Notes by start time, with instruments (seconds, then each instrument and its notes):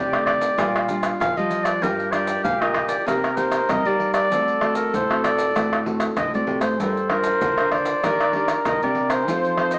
Already playing: nylon-string guitar C3, flute G4, clarinet D5
0.13 nylon-string guitar D#3 A3 D4, pandeiro, tamborim, maracas
0.26 clarinet D5, pandeiro, tamborim, surdo
0.41 pandeiro, maracas
0.58 nylon-string guitar A#2 G3 D4 F4, flute F4, pandeiro, tamborim, maracas, surdo
0.76 pandeiro, tamborim, maracas
0.89 nylon-string guitar G3 D4 F4, pandeiro, maracas
1.03 pandeiro, tamborim, maracas
1.20 nylon-string guitar A#2 F3, clarinet F5, pandeiro, tamborim, maracas, surdo
1.37 nylon-string guitar F3 G3 F4, clarinet D#5, pandeiro, maracas
1.51 pandeiro, maracas
1.64 clarinet D5, pandeiro, tamborim, maracas
1.82 nylon-string guitar G2 G3 D4 F4 A#4, flute G4, clarinet A#4, pandeiro, maracas, surdo
1.99 pandeiro, maracas
2.12 nylon-string guitar D4 F4 A#4, clarinet D5, pandeiro, tamborim, maracas
2.27 pandeiro, maracas
2.44 nylon-string guitar A#2 D3, clarinet F5, pandeiro, maracas, surdo
2.61 nylon-string guitar F4 A#4, clarinet D#5, pandeiro, tamborim, maracas
2.74 pandeiro, tamborim, surdo
2.89 clarinet D5, pandeiro, maracas
3.06 nylon-string guitar C3 A#3 D#4 G4, flute A#4, clarinet A#4, pandeiro, tamborim, maracas, surdo
3.24 pandeiro, tamborim, maracas
3.37 nylon-string guitar A#3 D#4 G4, clarinet C5, pandeiro, maracas
3.52 pandeiro, tamborim, maracas
3.69 nylon-string guitar C3 G3, clarinet D#5, pandeiro, tamborim, maracas, surdo
3.85 nylon-string guitar G3 A#3 D#4 G4, clarinet D5, pandeiro, maracas
4.00 pandeiro
4.14 clarinet D5, pandeiro, tamborim, maracas
4.31 nylon-string guitar D3 A3 C4 F#4, flute A4, pandeiro, maracas, surdo
4.48 pandeiro, maracas
4.61 nylon-string guitar A3 C4 F#4, pandeiro, tamborim
4.75 clarinet A#4, pandeiro, maracas
4.93 nylon-string guitar A2, clarinet C5, pandeiro, maracas, surdo
5.10 nylon-string guitar A3 C4 F#4, pandeiro, tamborim, maracas
5.24 clarinet D5, pandeiro, tamborim, maracas
5.38 pandeiro, maracas
5.55 nylon-string guitar A2 D3 A3 C4 F#4, pandeiro, tamborim, maracas, surdo
5.73 pandeiro, tamborim, maracas
5.86 nylon-string guitar A3 C4 F#4, pandeiro
6.00 pandeiro, tamborim, maracas
6.17 nylon-string guitar A2 D3, clarinet D#5, pandeiro, tamborim, maracas, surdo
6.34 nylon-string guitar A2 A3 C4 F#4, clarinet D5, pandeiro, maracas
6.47 nylon-string guitar C3, pandeiro
6.61 nylon-string guitar A2, clarinet C5, pandeiro, tamborim, maracas
6.79 nylon-string guitar G2 G3 D4 F4 A#4, clarinet A4, flute C5, pandeiro, maracas, surdo
6.97 pandeiro, maracas
7.10 nylon-string guitar D4 F4 A#4, clarinet A#4, pandeiro, tamborim
7.24 pandeiro, maracas
7.41 nylon-string guitar D3, pandeiro, maracas, surdo
7.58 nylon-string guitar D4 F4 A#4, pandeiro, tamborim, maracas
7.71 clarinet D5, pandeiro, tamborim, surdo
7.85 pandeiro, maracas
8.04 nylon-string guitar D#3 A#3 D4 G4, flute A#4, pandeiro, tamborim, maracas, surdo
8.20 pandeiro, tamborim, maracas
8.33 nylon-string guitar A#3 D4 G4, pandeiro
8.48 pandeiro, tamborim, maracas
8.65 nylon-string guitar A#2 D#3, clarinet D#5, pandeiro, tamborim, maracas, surdo
8.82 nylon-string guitar C3 A#3 D4 G4, clarinet D5, pandeiro, maracas
8.95 pandeiro
9.10 clarinet C5, pandeiro, tamborim, maracas
9.27 nylon-string guitar F3 C4 D#4 A4, flute C5, pandeiro, maracas, surdo
9.45 pandeiro, maracas
9.58 nylon-string guitar C4 D#4 A4, clarinet C5, pandeiro, tamborim
9.71 clarinet D#5, pandeiro, maracas